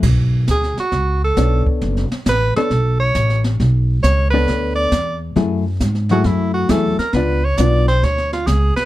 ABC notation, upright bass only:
X:1
M:4/4
L:1/8
Q:"Swing" 1/4=135
K:Bdor
V:1 name="Upright bass" clef=bass
B,,,2 D,, z C,,2 B,,, z | F,,, z A,,, z B,,,2 A,,,2 | B,,,2 C,,2 D,,2 E,,2 | F,,2 G,,2 F,,2 E,, z |
C,,2 B,,,2 D,,2 C,, z |]